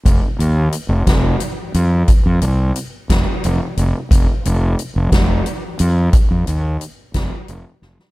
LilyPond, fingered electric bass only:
\new Staff \with { instrumentName = "Fingered electric bass" } { \clef bass \time 6/8 \key c \phrygian \tempo 4. = 59 f,,16 r16 ees,8 r16 f,,16 f,,8 r8 f,8 | r16 f,16 c,8 r8 f,,16 r16 f,,16 r16 f,,16 r16 | f,,16 r16 f,,8 r16 f,,16 f,,8 r8 f,8 | r16 f,16 ees,8 r8 f,,16 r16 f,,16 r16 f,,16 r16 | }